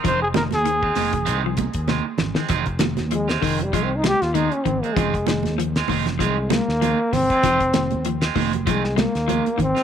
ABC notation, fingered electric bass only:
X:1
M:4/4
L:1/16
Q:"Swing 16ths" 1/4=98
K:Fm
V:1 name="Fingered electric bass" clef=bass
F,,,3 E,,3 F,,,2 C,,3 E,,2 z A,,, z | F,,,3 E,,3 F,,,2 C,,3 E,,2 z A,,, z | F,,,3 E,,3 F,,,2 C,,3 E,,2 z A,,, z | F,,,3 E,,3 F,,,2 C,,3 E,,2 z A,,, z |]